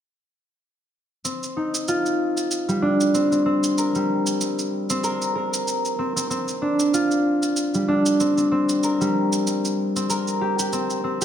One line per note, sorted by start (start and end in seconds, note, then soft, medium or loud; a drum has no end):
1.25 3.14 C4 medium
1.25 cabasa soft
1.43 cabasa soft
1.57 2.88 D#4 medium
1.74 cabasa medium
1.88 4.41 F4 medium
1.88 cabasa medium
2.06 cabasa soft
2.37 cabasa medium
2.51 cabasa medium
2.68 3.94 G3 medium
2.68 cabasa soft
2.82 5.62 D4 medium
3.01 cabasa medium
3.14 3.31 C4 medium
3.14 cabasa soft
3.32 3.45 C4 medium
3.32 cabasa soft
3.46 4.89 C4 medium
3.64 cabasa medium
3.78 5.03 A#4 medium
3.78 cabasa soft
3.95 6.36 G3 medium
3.95 cabasa soft
4.27 cabasa medium
4.41 cabasa medium
4.59 cabasa soft
4.90 5.98 C4 medium
4.90 cabasa medium
5.03 5.35 A#4 medium
5.03 cabasa soft
5.22 cabasa soft
5.35 7.47 A#4 medium
5.54 cabasa medium
5.68 cabasa medium
5.85 cabasa soft
5.99 6.16 C4 medium
6.16 6.30 C4 medium
6.16 cabasa medium
6.30 8.20 C4 medium
6.30 cabasa medium
6.48 cabasa soft
6.62 7.88 D4 medium
6.79 cabasa medium
6.94 9.46 F4 medium
6.94 cabasa medium
7.11 cabasa soft
7.43 cabasa medium
7.56 cabasa medium
7.74 9.00 G3 medium
7.74 cabasa soft
7.88 10.68 D4 medium
8.06 cabasa medium
8.20 8.37 C4 medium
8.20 cabasa medium
8.38 8.51 C4 medium
8.38 cabasa soft
8.52 9.96 C4 medium
8.69 cabasa medium
8.83 10.09 A#4 medium
8.83 cabasa medium
9.01 11.25 G3 medium
9.01 cabasa soft
9.33 cabasa medium
9.47 cabasa soft
9.65 cabasa soft
9.96 10.72 C4 medium
9.96 cabasa medium
10.09 11.25 A#4 medium
10.09 cabasa medium
10.27 cabasa soft
10.41 10.59 G4 medium
10.59 11.21 G4 medium
10.59 cabasa medium
10.73 11.04 C4 medium
10.73 cabasa medium
10.90 cabasa soft
11.04 11.25 C4 medium
11.21 11.25 G4 medium
11.21 cabasa medium